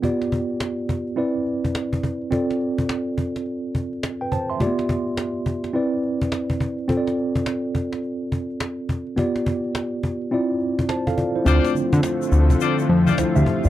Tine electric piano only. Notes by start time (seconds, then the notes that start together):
0.02 B3 F4 G4 D5
1.16 C4 E4 B4 D5
2.31 C4 F4 A4 D5
4.21 B4 G5
4.32 C5 A5
4.50 E5 C6
4.59 A3 F4 G4 D5
4.66 B3
5.73 C4 E4 B4 D5
6.88 C4 F4 A4 C5
6.97 D5
9.16 B3 F4 G4 D5
10.31 C4 E4 F4 D5
10.89 C5 A5
11.07 A4 F5
11.17 F4 D5
11.36 E4 C5
11.44 A3 C4 D4 F4 C5
13.18 E4 C5
13.36 G4 E5
13.64 F4 D5